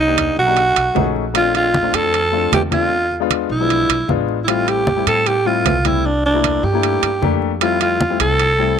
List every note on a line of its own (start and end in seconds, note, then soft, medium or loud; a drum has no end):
0.00 0.31 C2 medium
0.00 0.36 D#4 loud
0.07 0.35 A#3 medium
0.07 0.35 D4 medium
0.07 0.36 D#4 medium
0.07 0.36 G4 medium
0.18 high conga medium
0.18 high timbale medium
0.37 0.73 B1 medium
0.37 1.13 F#4 loud
0.37 high conga soft
0.46 0.57 A#3 medium
0.46 0.57 D4 medium
0.46 0.57 D#4 medium
0.46 0.57 G4 medium
0.57 high conga soft
0.57 high timbale medium
0.76 0.94 B1 medium
0.76 high conga soft
0.76 high timbale medium
0.95 1.88 A#1 medium
0.95 1.23 A3 medium
0.95 1.23 C#4 medium
0.95 1.23 D#4 medium
0.95 1.23 G#4 loud
0.95 high conga medium
0.95 low timbale medium
1.16 high conga soft
1.34 1.69 A3 medium
1.34 1.69 C4 medium
1.34 1.69 D4 medium
1.34 1.70 F4 medium
1.34 1.54 F4 medium
1.34 high conga soft
1.34 high timbale medium
1.55 1.97 F4 loud
1.55 high conga soft
1.55 high timbale medium
1.74 high conga medium
1.83 2.18 A3 medium
1.83 2.18 C4 medium
1.83 2.18 D4 medium
1.83 2.18 F4 medium
1.93 2.48 F2 loud
1.93 2.53 A4 loud
1.93 high conga soft
1.93 high timbale medium
2.14 high conga soft
2.14 high timbale medium
2.32 2.60 A3 medium
2.32 2.60 C4 medium
2.32 2.60 D4 medium
2.32 2.61 F4 medium
2.32 high conga soft
2.52 3.44 E2 medium
2.52 2.63 G4 medium
2.52 high conga medium
2.52 high timbale medium
2.52 low timbale medium
2.71 2.91 A3 medium
2.71 2.91 C4 medium
2.71 2.92 D4 medium
2.71 2.92 F4 medium
2.71 3.20 F4 medium
2.71 high conga medium
2.71 high timbale medium
2.92 high conga soft
3.11 high conga soft
3.20 3.48 G#3 medium
3.20 3.48 B3 medium
3.20 3.49 D4 medium
3.20 3.49 F4 loud
3.30 high conga medium
3.30 high timbale medium
3.49 3.86 B1 medium
3.49 4.25 E4 loud
3.49 high conga soft
3.59 3.95 F3 medium
3.59 3.94 G#3 medium
3.59 3.94 B3 medium
3.59 3.95 D4 medium
3.70 high conga soft
3.70 high timbale medium
3.89 4.07 B1 medium
3.89 high conga soft
3.89 high timbale medium
4.08 5.01 A1 medium
4.08 4.36 G#3 medium
4.08 4.36 B3 medium
4.08 4.37 D4 medium
4.08 4.37 F4 loud
4.08 high conga medium
4.29 high conga soft
4.44 4.82 G3 medium
4.44 4.82 A3 medium
4.44 4.82 C4 medium
4.44 4.51 E4 medium
4.44 high conga soft
4.44 high timbale loud
4.49 4.83 E4 medium
4.49 4.70 F4 medium
4.67 5.07 G4 medium
4.67 high conga soft
4.67 high timbale medium
4.87 high conga medium
4.96 5.31 G3 medium
4.96 5.31 A3 medium
4.96 5.32 C4 medium
4.96 5.32 E4 medium
5.06 5.61 A2 medium
5.06 5.29 A4 medium
5.06 high conga soft
5.06 high timbale medium
5.26 5.48 G4 loud
5.26 high conga soft
5.26 high timbale medium
5.45 5.73 G3 medium
5.45 5.73 A3 medium
5.45 5.74 C4 medium
5.45 5.74 E4 medium
5.45 5.88 F4 medium
5.45 high conga soft
5.65 6.57 C2 medium
5.65 high conga medium
5.65 high timbale medium
5.65 low timbale medium
5.85 6.05 G3 medium
5.85 6.05 A3 medium
5.85 6.05 C4 medium
5.85 6.08 E4 medium
5.85 6.06 E4 medium
5.85 high conga medium
5.85 high timbale medium
6.05 6.25 D4 medium
6.05 high conga soft
6.25 6.66 D4 medium
6.25 high conga soft
6.34 6.62 A3 medium
6.34 6.62 A#3 medium
6.34 6.62 D4 medium
6.34 6.62 E4 medium
6.44 high conga medium
6.44 high timbale medium
6.63 7.00 G2 medium
6.63 7.42 G4 loud
6.63 high conga soft
6.73 7.07 A3 medium
6.73 7.08 A#3 medium
6.73 7.08 D4 medium
6.73 7.08 E4 medium
6.83 high conga soft
6.83 high timbale medium
7.02 7.21 G2 medium
7.02 high conga soft
7.02 high timbale medium
7.22 8.14 F2 medium
7.22 7.50 A3 medium
7.22 7.50 A#3 medium
7.22 7.50 D4 medium
7.22 7.50 G4 loud
7.22 high conga medium
7.42 high conga soft
7.61 7.95 G3 medium
7.61 7.96 A3 medium
7.61 7.96 C4 medium
7.61 7.96 E4 medium
7.61 7.80 F4 medium
7.61 high conga soft
7.61 high timbale medium
7.81 8.18 F4 medium
7.81 high conga soft
7.81 high timbale medium
8.01 high conga loud
8.10 8.44 G3 medium
8.10 8.44 A3 medium
8.10 8.45 C4 medium
8.10 8.45 E4 medium
8.20 8.74 C2 medium
8.20 8.79 A4 loud
8.20 high conga soft
8.20 high timbale medium
8.39 high conga soft
8.39 high timbale medium
8.59 8.79 G3 medium
8.59 8.79 A3 medium
8.59 8.79 C4 medium
8.59 8.79 E4 medium
8.59 high conga soft